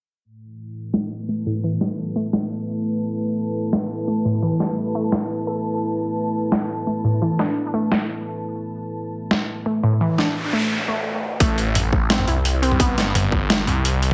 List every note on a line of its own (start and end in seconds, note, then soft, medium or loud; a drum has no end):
0.24 10.71 A3 medium
0.42 10.71 E4 medium
0.78 10.71 B4 medium
0.88 10.71 A5 medium
0.94 snare loud
1.29 1.45 A3 medium
1.46 1.62 A2 medium
1.64 1.79 E3 loud
1.81 2.14 G3 medium
1.81 snare medium
2.16 2.84 A3 medium
2.33 snare loud
3.73 snare loud
4.08 4.24 A3 medium
4.25 4.41 A2 medium
4.43 4.58 E3 loud
4.60 4.93 G3 medium
4.60 snare medium
4.95 5.63 A3 medium
5.12 snare loud
5.47 5.57 A4 medium
6.52 snare loud
6.87 7.04 A3 medium
7.04 7.20 A2 medium
7.22 7.37 E3 loud
7.39 7.56 D4 loud
7.39 snare medium
7.74 8.42 A3 medium
7.92 snare loud
9.31 snare loud
9.66 9.83 A3 medium
9.83 9.99 A2 loud
10.01 10.17 E3 loud
10.01 noise sweep medium
10.18 10.35 D4 loud
10.18 snare medium
10.53 10.87 A3 medium
10.88 11.04 A3 medium
11.40 11.91 A1 loud
11.40 12.08 A3 loud
11.40 kick loud
11.40 closed hi-hat medium
11.58 closed hi-hat soft
11.75 closed hi-hat medium
11.75 mid tom medium
11.93 12.26 A1 loud
11.93 kick medium
12.10 12.26 C4 medium
12.10 snare loud
12.10 closed hi-hat medium
12.19 mid tom medium
12.28 12.96 C2 loud
12.28 12.44 E4 medium
12.28 closed hi-hat soft
12.45 closed hi-hat medium
12.62 12.72 C4 loud
12.62 closed hi-hat soft
12.72 mid tom medium
12.80 13.48 B3 loud
12.80 kick loud
12.80 closed hi-hat medium
12.97 13.66 G1 loud
12.97 snare medium
12.97 closed hi-hat soft
13.15 closed hi-hat medium
13.15 mid tom medium
13.32 kick medium
13.50 snare loud
13.50 closed hi-hat medium
13.67 14.14 C2 loud
13.67 closed hi-hat soft
13.67 mid tom medium
13.85 closed hi-hat medium
14.02 closed hi-hat soft